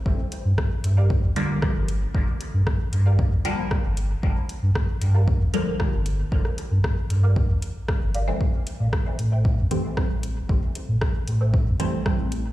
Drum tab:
HH |--x---x---x---x-|--x---x---x---x-|--x---x---x---x-|--x---x---x---x-|
SD |----r-------r---|----r-------r---|----r-------r---|-r--r-------r---|
BD |o---o---o---o---|o---o---o---o---|o---o---o---o---|o---o---o---o---|

HH |--x---x---x---x-|--x---x---x---x-|
SD |----r-------r---|----r-------r---|
BD |o---o---o---o---|o---o---o---o---|